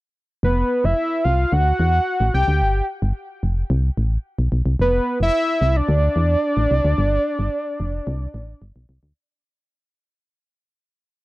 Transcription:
0.43 F1 B4
0.84 F1 E5
1.24 C2 F5
1.52 D2 F#5
1.80 E2
2.20 A1
2.34 C2 G5
2.48 D2
2.61 G1
3.02 G1
3.43 F1
3.70 C2
3.97 A1
4.39 B1
4.52 B1
4.66 C2
4.79 F1 B4
5.20 F1 E5
5.61 C2
5.76 D5
5.89 D2
6.16 E2
6.57 A1
6.71 C2
6.85 D2
6.98 G1
7.39 G1
7.80 F1
8.07 C2
8.34 A1
8.62 G1
8.76 B1
8.89 C2
9.03 D2

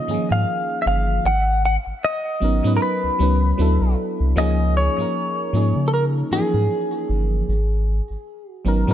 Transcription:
Already playing: F3 A#3 C#4 D#4 F4 G#4 D#5
0.07 G#2 D#3 A#3 C#4 D#4 G#4
0.14 F3
0.31 G#2 F5
0.82 E5
0.86 G1 F5
1.25 G#1 F#5
1.65 F#5
1.87 G#1
2.05 D#5
2.40 G#1 F#3 B3 C#4 D#4 A#4
2.64 G#2 F#3 B3 C#4 D#4 B4
2.77 A#4
2.82 B4
3.04 C#2
3.19 C#2 F#3 B3 C#4 D#4 B4
3.58 D2 F#3 B3 D4 E4 A4
3.81 B1
4.20 C2
4.36 C#2 F3 A#3 C#4 D#4 G#4 D#5
4.77 C#5
4.98 G#2 F3 A#3 C#4 D#4 A#4
5.53 G#2 F3 A#3 C#4 D#4 G#4
5.76 C#3
5.88 A4
5.94 A#4
6.31 G#2 E3 A#3 C#4 D#4 G#4
6.37 F3
6.54 G#2
7.09 G1
7.49 G#1
8.10 G#1
8.51 F#4
8.65 G#1 F#3 B3 C#4 D#4 A#4
8.87 G#2 F#3 B3 C#4 D#4

